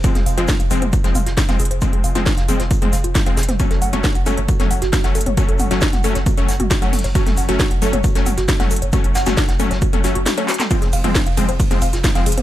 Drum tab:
RD |--------------------------------|--------------------------------|--------------------------------|--------------------------------|
HH |x-x-o-x---x-o-x-x-x-o-x-x-x-oxx-|x-x-o-x---x-o-x-x-x-o-x-x-x-oxx-|x-x-o-x---x-o-x-x-x-o-x-x-x-oxx-|x-x-o-x---x-o-x-x-x-o-x-x-x-oxx-|
SH |x---x---x---x---x---x---x---x---|x---x---x---x---x---x---x---x---|x---x---x---x---x---x---x---x---|x---x---x---x---x---x---x-------|
CP |--------------------------------|--------------------------------|--------------------------------|--------------------------------|
SD |--o-----o---------o---o-o-o-----|------o-o-o---o-----o---o---o-o-|--o-----o---------o---o-o-o-----|------o-o-o---o-----o---o-----o-|
T2 |--o-----o-----o-----o-----o-----|o-----o-----o-----o-----o-----o-|o-----o-----o-----o-----o-----o-|----o-----o-----o-----o-----o---|
BD |o-------o-------o-------o-------|o-------o-------o-------o-------|o-------o-------o-------o-------|o-------o-------o-------o-------|

RD |--------------------------------|--------------------------------|x---x---x---x---x---x---x---x---|
HH |x-x-o-x---x-o-x-x-x-o-x-x-x-oxx-|x-x-o-x-x-x-o-x-x-x-o-x-x-x-oxx-|x-x-o-x---x-o-x-x-x-o-x-x-x-oxx-|
SH |x---x---x---x---x---x---x---x---|x---x-x-x---x---x---x---x---x-x-|x---x---x---x---x---x---x---x---|
CP |--------------------------------|----------------------------x-x-|--------------------------------|
SD |--o-----o---------o---o-o-o-----|----o-o-o-o---o-----o---o---o-o-|--o-----o---------o---o-o-o-----|
T2 |--o-----o-----o-----o-----o-----|o-----o-----o-----o-----o-----o-|o-----o-----o-----o-----o-----o-|
BD |o-------o-------o-------o-------|o-------o-------o---------------|o-------o-------o-------o-------|